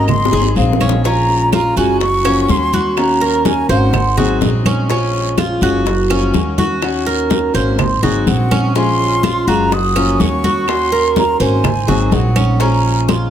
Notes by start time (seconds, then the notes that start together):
Already playing: G#1 D#5
0.07 C6, muted steel-string acoustic guitar stroke, high bongo, high conga, low conga, long guiro, claves
0.25 high bongo
0.31 G#1 F#3 C4 D#4 G#4, high conga, low conga
0.41 high bongo
0.56 A#1 F#3 C4 D#4 G#4 F5, high conga, short guiro
0.73 low bongo
0.80 C#4, high conga, short guiro, claves
0.89 low bongo
1.04 F3 G#3 C#4 F4 A#5, high bongo, high conga, long guiro
1.29 high bongo, high conga
1.52 F4 A#5, high bongo, high conga, short guiro, claves
1.76 F#1 G#3 C#4 F4 F#4 G#5, high conga, short guiro
2.00 C#6, muted steel-string acoustic guitar stroke, high bongo, high conga, long guiro
2.24 F3 A#3 C#4 F#4, high bongo, high conga, claves
2.49 D#2 A#3 C#4 F#4 C6, high bongo, low bongo, high conga, short guiro
2.73 F#4, high bongo, high conga, short guiro
2.91 C6
2.97 D#3 A#3 C#4 F#4 A#5, high bongo, high conga, long guiro, claves
3.21 A#4, high bongo, high conga
3.45 G#5, high bongo, high conga, short guiro
3.69 G#1 A#3 C#4 F#4 C5 F#5, short guiro
3.93 muted steel-string acoustic guitar stroke, high bongo, high conga, low conga, long guiro, claves
4.17 F#3 C4 D#4 F#4 G#4, high bongo, high conga, low conga
4.41 A#1 F#3 C4 D#4 G#4, high bongo, low bongo, high conga, short guiro
4.65 C#4, high bongo, high conga, short guiro, claves
4.89 F3 G#3 C#4 F4, high bongo, high conga, long guiro
5.13 high bongo, high conga
5.38 F4, high bongo, high conga, short guiro, claves
5.61 F#1 G#3 C#4 F4 F#4, high conga, short guiro
5.86 muted steel-string acoustic guitar stroke, high bongo, high conga, long guiro
6.09 F3 A#3 C#4 F#4, high bongo, high conga, claves
6.34 D#2 A#3 C#4 F#4, high bongo, low bongo, high conga, short guiro
6.58 F#4, high bongo, high conga, short guiro
6.82 D#3 A#3 C#4 F#4, high bongo, high conga, long guiro, claves
7.06 A#4, high bongo, high conga
7.30 high bongo, high conga, short guiro
7.54 G#1 A#3 C#4 F#4 C5, short guiro
7.78 muted steel-string acoustic guitar stroke, high bongo, high conga, low conga, long guiro, claves
8.02 G#1 F#3 C4 D#4 F#4 G#4, high bongo, high conga, low conga
8.26 A#1 F#3 C4 D#4 G#4 F#5, high bongo, low bongo, high conga, short guiro
8.51 C#4, high bongo, high conga, short guiro, claves
8.75 F3 G#3 C#4 F4 C6, high bongo, high conga, long guiro
9.00 high bongo, high conga
9.23 F4, high bongo, high conga, short guiro, claves
9.47 F#1 G#3 C#4 F4 F#4 A#5, high conga, short guiro
9.72 D#6, muted steel-string acoustic guitar stroke, high bongo, high conga, long guiro
9.95 F3 A#3 C#4 F#4, high bongo, high conga, claves
10.20 D#2 A#3 C#4 F#4 C#6, high bongo, low bongo, high conga, short guiro
10.44 F#4, high bongo, high conga, short guiro
10.68 D#3 A#3 C#4 F#4 C6, high bongo, high conga, long guiro, claves
10.92 A#4, high bongo, high conga
11.16 A#5, high bongo, high conga, short guiro
11.40 G#1 A#3 C#4 F#4 C5 G#5, short guiro
11.64 muted steel-string acoustic guitar stroke, high bongo, high conga, low conga, long guiro, claves
11.87 G#1 F#3 C4 D#4 F#4 G#4, high bongo, high conga, low conga
12.11 A#1 F#3 C4 D#4 G#4 F#5, high bongo, low bongo, high conga, short guiro
12.36 C#4, high bongo, high conga, short guiro, claves
12.60 F3 G#3 C#4 F4 A#5, high bongo, high conga, long guiro
12.84 high bongo, high conga
13.08 F4, high bongo, high conga, short guiro, claves